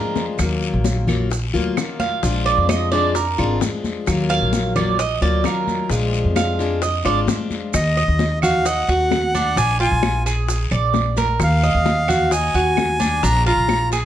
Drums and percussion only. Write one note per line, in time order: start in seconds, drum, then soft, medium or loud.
0.16 low bongo medium
0.16 high conga medium
0.16 short guiro medium
0.16 maracas soft
0.39 high bongo medium
0.39 high conga soft
0.39 long guiro medium
0.39 claves medium
0.39 maracas medium
0.62 high conga soft
0.62 maracas soft
0.84 high bongo medium
0.84 high conga medium
0.84 short guiro medium
0.84 maracas medium
1.07 high conga soft
1.07 low conga medium
1.07 short guiro medium
1.07 claves medium
1.07 maracas soft
1.31 high bongo medium
1.31 high conga soft
1.31 long guiro medium
1.31 maracas medium
1.54 high conga soft
1.54 maracas soft
1.77 high bongo medium
1.77 low bongo medium
1.77 high conga soft
1.77 short guiro medium
1.77 claves medium
1.77 maracas medium
2.00 high conga medium
2.00 short guiro medium
2.00 maracas soft
2.23 high bongo medium
2.23 high conga soft
2.23 long guiro medium
2.23 maracas medium
2.46 high bongo soft
2.46 high conga soft
2.46 maracas soft
2.69 high bongo medium
2.69 high conga medium
2.69 short guiro medium
2.69 claves medium
2.69 maracas medium
2.92 high conga soft
2.92 short guiro medium
2.92 maracas soft
3.15 high bongo medium
3.15 high conga soft
3.15 long guiro medium
3.15 maracas medium
3.38 high bongo soft
3.38 high conga soft
3.38 claves medium
3.38 maracas soft
3.61 high bongo medium
3.61 low bongo medium
3.61 high conga medium
3.61 short guiro medium
3.61 maracas medium
3.84 high bongo soft
3.84 high conga medium
3.84 short guiro medium
3.84 maracas soft
4.07 high bongo medium
4.07 high conga soft
4.07 long guiro medium
4.07 claves medium
4.07 maracas medium
4.30 high conga soft
4.30 maracas soft
4.53 high bongo medium
4.53 high conga loud
4.53 short guiro medium
4.53 maracas medium
4.76 high conga soft
4.76 low conga medium
4.76 short guiro medium
4.76 claves medium
4.76 maracas soft
4.99 high bongo medium
4.99 high conga soft
4.99 long guiro medium
4.99 maracas medium
5.22 high conga soft
5.22 maracas soft
5.44 high bongo medium
5.44 low bongo medium
5.44 high conga soft
5.44 short guiro medium
5.44 claves medium
5.44 maracas medium
5.68 high conga medium
5.68 short guiro medium
5.68 maracas soft
5.90 high bongo medium
5.90 high conga soft
5.90 long guiro medium
5.90 maracas medium
6.13 high bongo soft
6.13 high conga soft
6.13 maracas soft
6.36 high bongo medium
6.36 high conga medium
6.36 short guiro medium
6.36 claves medium
6.36 maracas medium
6.59 high conga soft
6.59 short guiro medium
6.59 maracas soft
6.82 high bongo medium
6.82 high conga soft
6.82 long guiro medium
6.82 maracas medium
7.05 high bongo soft
7.05 high conga soft
7.05 claves medium
7.05 maracas soft
7.28 high bongo medium
7.28 low bongo medium
7.28 high conga medium
7.28 short guiro medium
7.28 maracas medium
7.51 high bongo soft
7.51 high conga medium
7.51 short guiro medium
7.51 maracas soft
7.74 high bongo medium
7.74 high conga soft
7.74 long guiro medium
7.74 claves medium
7.74 maracas medium
7.97 high bongo soft
7.97 high conga soft
7.97 maracas soft
8.19 high bongo medium
8.19 high conga loud
8.19 short guiro medium
8.19 maracas soft
8.42 high bongo soft
8.42 low conga medium
8.42 short guiro medium
8.42 claves medium
8.42 maracas medium
8.66 high bongo medium
8.66 high conga soft
8.66 long guiro medium
8.66 maracas medium
8.89 high conga soft
8.89 maracas soft
9.11 high bongo soft
9.11 low bongo medium
9.11 high conga medium
9.11 short guiro medium
9.11 claves medium
9.11 maracas soft
9.34 high bongo soft
9.34 high conga medium
9.34 short guiro medium
9.34 maracas medium
9.57 high bongo medium
9.57 high conga soft
9.57 long guiro medium
9.57 maracas medium
9.80 high bongo soft
9.80 high conga soft
9.80 maracas soft
10.03 high bongo medium
10.03 high conga loud
10.03 short guiro medium
10.03 claves medium
10.03 maracas soft
10.26 high bongo soft
10.26 high conga soft
10.26 short guiro medium
10.26 maracas medium
10.49 high bongo medium
10.49 high conga soft
10.49 long guiro medium
10.49 maracas medium
10.71 high conga soft
10.71 claves medium
10.71 maracas soft
10.94 high bongo soft
10.94 low bongo medium
10.94 high conga medium
10.94 short guiro medium
10.94 maracas soft
11.17 high bongo soft
11.17 high conga medium
11.17 short guiro medium
11.17 maracas medium
11.40 high bongo medium
11.40 high conga soft
11.40 long guiro medium
11.40 claves medium
11.40 maracas medium
11.63 high bongo soft
11.63 maracas soft
11.86 high bongo medium
11.86 high conga loud
11.86 short guiro medium
11.86 maracas soft
12.08 high bongo soft
12.08 low conga medium
12.08 short guiro medium
12.08 claves medium
12.08 maracas medium
12.31 high bongo medium
12.31 high conga soft
12.31 long guiro medium
12.31 maracas medium
12.55 high conga soft
12.55 maracas soft
12.77 high bongo soft
12.77 low bongo medium
12.77 high conga medium
12.77 short guiro medium
12.77 claves medium
12.77 maracas soft
13.00 high bongo soft
13.00 high conga medium
13.00 short guiro medium
13.00 maracas medium
13.23 high bongo medium
13.23 long guiro medium
13.23 maracas medium
13.46 high bongo soft
13.46 high conga soft
13.46 maracas soft
13.69 high bongo medium
13.69 high conga medium
13.69 short guiro medium
13.69 claves medium
13.69 maracas soft
13.91 high bongo soft
13.91 high conga soft
13.91 short guiro medium
13.91 maracas medium